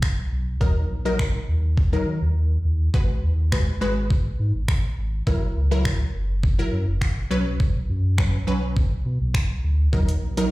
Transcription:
0.00 0.25 B1 medium
0.00 finger snap loud
0.00 kick loud
0.32 0.56 B1 medium
0.61 0.85 D#2 loud
0.61 0.93 F#3 medium
0.61 0.93 D#4 medium
0.61 0.93 A#4 medium
0.61 kick loud
0.90 1.39 A#1 medium
1.05 1.69 F#3 medium
1.05 1.70 D#4 medium
1.05 1.70 A#4 medium
1.19 finger snap loud
1.19 kick loud
1.48 1.97 D#2 loud
1.77 kick loud
1.93 2.67 F#3 medium
1.93 2.67 D#4 medium
1.93 2.68 A#4 medium
2.07 2.20 D#3 medium
2.22 2.58 D#2 medium
2.65 2.89 D#2 medium
2.94 3.18 G#1 loud
2.94 3.38 G#3 medium
2.94 3.38 F#4 medium
2.94 3.38 B4 medium
2.94 kick loud
3.23 3.72 D#2 medium
3.52 3.74 G#3 medium
3.52 3.74 F#4 medium
3.52 3.74 B4 medium
3.52 finger snap loud
3.52 kick loud
3.81 4.30 G#1 loud
3.81 4.67 G#3 medium
3.81 4.67 F#4 medium
3.81 4.68 B4 medium
4.10 kick loud
4.39 4.52 G#2 medium
4.55 4.91 G#1 medium
4.68 finger snap loud
4.68 kick loud
4.98 5.22 G#1 medium
5.27 5.51 F#1 loud
5.27 5.59 F#3 medium
5.27 5.59 E4 medium
5.27 5.59 A#4 medium
5.27 kick loud
5.56 6.05 C#2 medium
5.71 6.35 F#3 medium
5.71 6.36 E4 medium
5.71 6.36 A#4 medium
5.85 finger snap loud
5.85 kick loud
6.14 6.63 F#1 loud
6.43 kick loud
6.59 7.29 F#3 medium
6.59 7.31 E4 medium
6.59 7.31 A#4 medium
6.73 6.85 F#2 medium
6.88 7.24 F#1 medium
7.01 finger snap loud
7.01 kick loud
7.31 7.55 B1 medium
7.31 8.01 F#3 medium
7.31 8.01 C#4 medium
7.31 8.02 B4 loud
7.60 7.84 B1 loud
7.60 kick loud
7.89 8.38 F#2 medium
8.18 8.40 F#3 medium
8.18 8.40 C#4 medium
8.18 8.40 B4 medium
8.18 finger snap loud
8.18 kick loud
8.47 8.96 B1 medium
8.47 9.33 F#3 medium
8.47 9.33 C#4 medium
8.47 9.34 B4 medium
8.77 kick loud
9.06 9.19 B2 medium
9.21 9.57 B1 medium
9.34 finger snap loud
9.34 kick loud
9.64 9.88 D2 medium
9.93 10.17 D#2 loud
9.93 10.25 F#3 medium
9.93 10.25 D#4 medium
9.93 10.25 A#4 loud
9.93 kick loud
10.09 closed hi-hat medium
10.22 10.51 A#1 medium
10.37 10.51 F#3 medium
10.37 10.51 D#4 medium
10.37 10.51 A#4 medium
10.37 closed hi-hat medium

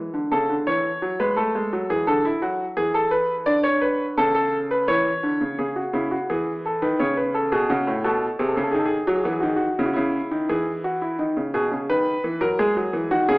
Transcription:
0.00 0.13 E3 medium
0.14 0.31 D3 medium
0.32 0.49 C#3 medium
0.32 0.54 A4 medium
0.50 0.67 D3 medium
0.67 0.89 E3 medium
0.67 1.18 C#5 medium
1.02 1.20 F#3 medium
1.20 1.37 G#3 medium
1.20 1.37 B4 medium
1.37 1.54 A3 medium
1.37 1.88 A4 medium
1.55 1.72 G#3 medium
1.73 1.90 F#3 medium
1.90 2.07 E3 medium
1.90 2.07 G#4 medium
2.07 2.29 D3 medium
2.07 2.25 A4 medium
2.25 2.42 E4 medium
2.42 2.64 F#3 medium
2.42 2.64 F#4 medium
2.77 3.45 E3 medium
2.77 2.94 G#4 medium
2.94 3.12 A4 medium
3.11 3.33 B4 medium
3.46 4.15 D3 medium
3.46 3.64 D5 medium
3.63 3.81 C#5 medium
3.81 4.04 B4 medium
4.17 4.86 C#3 medium
4.17 4.33 A4 medium
4.35 4.57 A4 medium
4.71 4.88 B4 medium
4.88 5.10 E3 medium
4.88 5.57 C#5 medium
5.23 5.41 D3 medium
5.41 5.57 C#3 medium
5.59 5.81 C#3 medium
5.59 5.76 G#4 medium
5.76 5.93 F#4 medium
5.93 6.15 C#3 medium
5.93 6.11 E4 medium
6.11 6.29 F#4 medium
6.30 6.81 E3 medium
6.30 6.52 G#4 medium
6.66 6.82 A4 medium
6.82 6.99 D#3 medium
6.82 6.99 B4 medium
6.99 7.51 C#3 medium
6.99 7.17 C#5 medium
7.17 7.34 B4 medium
7.34 7.52 A4 medium
7.52 7.70 B2 medium
7.52 7.69 G#4 medium
7.70 7.87 C#3 medium
7.70 7.92 F#4 medium
7.87 8.04 A2 medium
8.04 8.26 B2 medium
8.04 8.26 A4 medium
8.39 8.57 C3 medium
8.39 8.48 G#4 medium
8.48 8.56 A4 medium
8.56 8.74 C#3 medium
8.56 8.64 G#4 medium
8.63 8.72 A4 medium
8.71 8.96 D#3 medium
8.71 8.80 G#4 medium
8.79 8.87 A4 medium
8.85 9.08 G#4 medium
9.07 9.25 F#3 medium
9.07 9.17 F#4 medium
9.15 9.25 G#4 medium
9.24 9.43 E3 medium
9.24 9.33 F#4 medium
9.33 9.41 G#4 medium
9.40 9.65 D#3 medium
9.40 9.49 F#4 medium
9.48 9.57 G#4 medium
9.56 9.78 F#4 medium
9.79 9.95 C#3 medium
9.79 9.86 E4 medium
9.86 9.93 F#4 medium
9.93 10.18 C#3 medium
9.93 10.48 E4 medium
10.31 10.49 D#3 medium
10.49 11.17 E3 medium
10.49 10.71 G#4 medium
10.84 11.01 F#4 medium
11.01 11.19 E4 medium
11.19 11.36 D#3 medium
11.19 11.41 D#4 medium
11.37 11.54 C#3 medium
11.54 11.71 B2 medium
11.54 11.76 G#4 medium
11.71 11.89 C#3 medium
11.89 12.11 D#3 medium
11.89 12.40 B4 medium
12.24 12.41 E3 medium
12.41 12.58 F#3 medium
12.41 12.58 A#4 medium
12.59 12.76 G#3 medium
12.59 13.10 G#4 medium
12.76 12.93 F#3 medium
12.93 13.10 E3 medium
13.11 13.28 D#3 medium
13.11 13.28 F#4 medium
13.29 13.38 C#3 medium
13.29 13.38 G#4 medium

